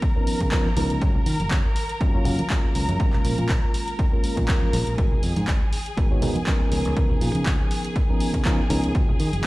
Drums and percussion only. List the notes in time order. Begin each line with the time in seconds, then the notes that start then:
0.02 kick, closed hi-hat
0.27 open hi-hat, tambourine
0.41 kick, closed hi-hat, tambourine, high conga
0.52 kick, clap, closed hi-hat, tambourine
0.66 high conga
0.77 open hi-hat, tambourine, high conga
0.90 closed hi-hat, tambourine
1.01 kick, closed hi-hat, tambourine
1.15 low conga
1.26 open hi-hat, tambourine
1.39 closed hi-hat, tambourine, high conga
1.51 kick, clap, closed hi-hat, tambourine
1.76 open hi-hat, tambourine
1.89 closed hi-hat, tambourine
2.01 kick, closed hi-hat
2.25 open hi-hat, tambourine, low conga
2.38 closed hi-hat, tambourine, high conga
2.50 kick, clap, closed hi-hat, tambourine
2.74 open hi-hat, tambourine
2.89 closed hi-hat, tambourine, high conga
3.00 kick, closed hi-hat, tambourine
3.13 clap, low conga
3.25 open hi-hat, tambourine
3.38 closed hi-hat, tambourine, high conga
3.49 kick, clap, closed hi-hat
3.74 open hi-hat, tambourine
3.88 closed hi-hat, tambourine
3.99 kick, closed hi-hat
4.24 open hi-hat, tambourine
4.37 kick, closed hi-hat, tambourine, high conga
4.48 kick, clap, closed hi-hat, tambourine
4.62 high conga
4.73 open hi-hat, tambourine, high conga
4.87 closed hi-hat, tambourine
4.98 kick, closed hi-hat
5.12 low conga
5.23 open hi-hat, tambourine
5.36 closed hi-hat, tambourine, high conga
5.48 kick, clap, closed hi-hat
5.73 open hi-hat, tambourine
5.86 closed hi-hat, tambourine
5.97 kick, closed hi-hat
6.22 open hi-hat, tambourine, low conga
6.35 closed hi-hat, tambourine, high conga
6.47 kick, clap, closed hi-hat, tambourine
6.71 open hi-hat, tambourine
6.85 closed hi-hat, tambourine, high conga
6.96 kick, closed hi-hat, tambourine
7.10 low conga
7.21 open hi-hat, tambourine
7.35 closed hi-hat, tambourine, high conga
7.46 kick, clap, closed hi-hat
7.71 open hi-hat, tambourine
7.84 closed hi-hat, tambourine
7.96 kick, closed hi-hat
8.20 open hi-hat, tambourine
8.34 kick, closed hi-hat, tambourine, high conga
8.45 kick, clap, closed hi-hat, tambourine
8.59 high conga
8.70 open hi-hat, tambourine, high conga
8.83 closed hi-hat, tambourine
8.95 kick, closed hi-hat, tambourine
9.09 low conga
9.19 open hi-hat, tambourine
9.32 closed hi-hat, tambourine, high conga